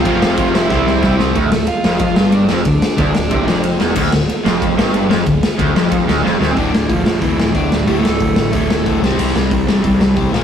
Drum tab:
CC |x---x-----------|----------------|----------------|x---------------|
RD |----------------|x---x---x---x---|x---x---x---x---|----x---x---x---|
HH |----------------|----------------|----------------|----------------|
SD |--o---o-o-o-o-o-|--o---o---o---o-|--o---o---o---o-|--o---o---o---o-|
BD |o---o---o---o---|o-------o-------|o---o---o-------|o-------o-------|

CC |----------------|----------------|----------------|x---------------|
RD |x---x---x-------|----------------|----------------|----------------|
HH |----------------|o---o---o---o---|o---o---o---o---|----o---o---o---|
SD |--o---o---o-o-o-|--o---o---o---o-|--o---o---o---o-|--o---o---o---o-|
BD |o---o---o-------|o---o---o---o--o|o---o---o---o--o|o---o---o---o---|